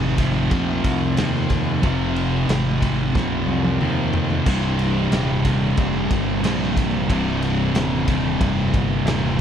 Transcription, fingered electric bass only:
Already playing: G#1
0.51 A#1
0.84 C2
1.18 D#2
1.84 F1
2.49 G#1
3.15 A#1
3.46 C2
3.80 D#2
4.46 C1
5.11 D#1
5.77 F1
6.11 G1
6.43 A#1
7.10 C1
7.74 D#1
8.41 F1
8.74 G1
9.05 D#1

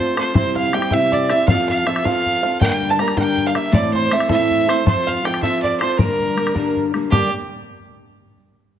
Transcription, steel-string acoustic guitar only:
Already playing: A3 C4 F4 A4
0.16 C4 F4 A4
0.33 C3 G3 C4 E4 G4
0.72 G3 C4 E4 G4
0.92 C3 G3 C4 E4 G4
1.30 C4 E4 G4
1.48 F3 C4 F4 A4
1.86 F3 C4 F4 A4
2.04 F3 C4 F4 A4
2.42 C4 F4 A4
2.60 G2 D3 G3 A#3 D4 A#4
2.98 G3 A#3 D4 A#4
3.16 G2 D3 G3 A#3 D4 A#4
3.55 G3 A#3 D4 A#4
3.71 A2 E3 A3 C4 E4 A4
4.10 A3 C4 E4 A4
4.29 A2 E3 A3 C4 E4 A4
4.67 A3 C4 E4 A4
4.84 F3 C4 F4 A4
5.23 F3 C4 F4 A4
5.42 F3 C4 F4 A4
5.80 C4 F4 A4
5.99 G2 D3 G3 A#3 D4 A#4
6.36 G3 A#3 D4 A#4
6.55 G2 D3 G3 A#3 D4 A#4
6.93 G3 A#3 D4 A#4
7.11 G2 D3 G3 A#3 D4 G4

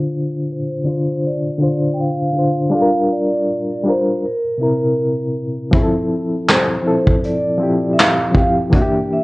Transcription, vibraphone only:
0.52 C5
1.26 D5
1.94 G5
2.00 F5
2.75 F5
3.13 D5
3.88 C5
4.26 A#4
6.50 C5
7.25 D5
7.93 E5
8.00 F5
8.37 F5
8.75 E5
9.13 E5

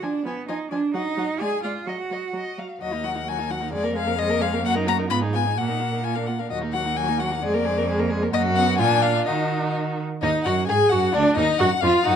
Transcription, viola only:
0.02 F3
0.25 F3
0.49 F3
0.72 F3
0.94 F#3
1.17 F#3
1.40 G#3
1.64 G#3
1.86 F#3
2.11 F#3
2.33 F#3
2.58 F#3
2.81 F#3
2.92 A#3
3.04 F#3
3.15 A#3
3.27 F#3
3.39 A#3
3.50 F#3
3.61 A#3
3.72 G#3
3.83 A#3
3.95 G#3
4.06 A#3
4.18 G#3
4.29 A#3
4.42 G#3
4.53 A#3
4.64 A#3
4.76 D#4
4.88 A#3
4.99 D#4
5.10 B3
5.22 D#4
5.35 B3
5.47 D#4
5.58 A#3
5.70 D#4
5.82 A#3
5.94 D#4
6.05 A#3
6.17 D4
6.29 A#3
6.41 D4
6.52 F#3
6.63 A#3
6.75 F#3
6.86 A#3
6.98 F#3
7.10 A#3
7.20 F#3
7.32 A#3
7.43 G#3
7.55 A#3
7.66 G#3
7.77 A#3
7.90 G#3
8.00 A#3
8.11 G#3
8.23 A#3
8.33 A#3
8.56 B3
8.80 D4
9.27 D#4
10.22 D#4
10.46 F#4
10.68 G#4
10.92 F#4
11.14 D4
11.38 D#4
11.60 F#4
11.82 F4
12.05 D#4

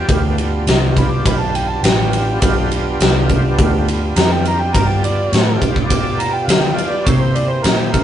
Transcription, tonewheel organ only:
0.08 B3 D4 F4 G4
2.44 B3 D4 F4 G4
4.76 B3 F4 G4 D5
7.08 A#3 E4 G4 C5

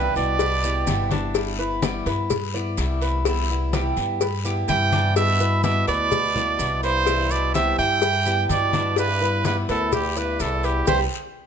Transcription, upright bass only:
0.16 C2
0.87 G1
2.06 G2
2.78 C2
3.97 G2
4.69 G2
5.88 D2
6.59 C2
7.79 G2
8.50 G2
9.69 D2
10.40 C2
10.87 C2

